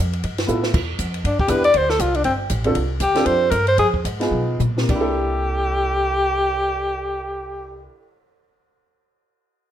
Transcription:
0.00 upright bass F2
0.13 ride
0.23 upright bass G2, kick, ride
0.38 snare, ride
0.47 upright bass A2, grand piano B3 E4 F4 A4, hi-hat pedal
0.63 snare
0.74 upright bass E2, kick, crash
0.99 upright bass F2, kick, hi-hat pedal, ride
1.14 ride
1.24 upright bass G2, alto saxophone D4, kick, ride
1.39 alto saxophone G4, kick
1.47 upright bass E2, grand piano B3 D4 E4 G4, alto saxophone B4, kick, hi-hat pedal, ride
1.64 alto saxophone D5, ride
1.74 upright bass D2, alto saxophone C5, kick, ride
1.90 alto saxophone A4, snare
1.99 upright bass C2, alto saxophone F4, kick, hi-hat pedal, ride
2.14 alto saxophone D4, ride
2.24 upright bass G1, alto saxophone C4, kick, ride
2.50 upright bass A1, kick, hi-hat pedal, ride
2.64 grand piano C4 D4 F4 A4, ride
2.75 upright bass C2, kick, ride
3.00 upright bass D2, alto saxophone G4, kick, hi-hat pedal, ride
3.15 grand piano C4 D4 F4 A4, snare, ride
3.26 upright bass F2, alto saxophone C5, kick, ride
3.51 upright bass G2, alto saxophone A#4, kick, hi-hat pedal, ride
3.67 alto saxophone C5, ride
3.78 upright bass F2, alto saxophone G#4, kick, ride
3.94 kick
4.05 upright bass G#2, kick, hi-hat pedal, ride
4.20 grand piano B3 D#4 F4 G#4, snare, ride
4.31 upright bass B2, mid tom
4.60 upright bass A#2, floor tom, hi-hat pedal
4.77 grand piano C3, snare
4.82 grand piano A#3
4.89 upright bass C2, grand piano D4, alto saxophone G4, kick, crash
4.95 grand piano E4
5.01 grand piano A4
5.07 cymbal swell

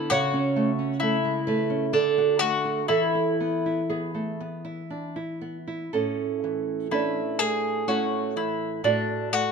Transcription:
Already playing: nylon-string guitar B3
0.10 nylon-string guitar C#3 C#5, mandolin F#4
0.34 nylon-string guitar C#4
0.56 nylon-string guitar A3
0.79 nylon-string guitar C#4
1.00 nylon-string guitar A3, mandolin E4
1.25 nylon-string guitar G#3
1.47 nylon-string guitar A3 B4
1.70 nylon-string guitar C#4
1.93 nylon-string guitar D3 A4, mandolin D4
2.18 nylon-string guitar F#4
2.39 nylon-string guitar A3, mandolin F#4
2.65 nylon-string guitar F#4
2.88 nylon-string guitar E3 A4, mandolin E4
3.15 nylon-string guitar E4
3.40 nylon-string guitar B3
3.66 nylon-string guitar E4
3.90 nylon-string guitar B3 G#4
4.14 nylon-string guitar A3
4.40 nylon-string guitar B3
4.65 nylon-string guitar E4
4.90 nylon-string guitar D4
5.16 nylon-string guitar E4
5.41 nylon-string guitar B3
5.67 nylon-string guitar E4
5.93 nylon-string guitar A2 C#4 A4
6.44 nylon-string guitar E3
6.91 nylon-string guitar A3 C#4 D4 B4, mandolin E4
7.39 nylon-string guitar A3, mandolin G#4
7.88 nylon-string guitar A3 C#4 E4 C#5, mandolin F#4
8.36 nylon-string guitar E3, mandolin E4
8.84 nylon-string guitar A2 F#4 D5, mandolin D4
9.32 nylon-string guitar A3, mandolin F#4

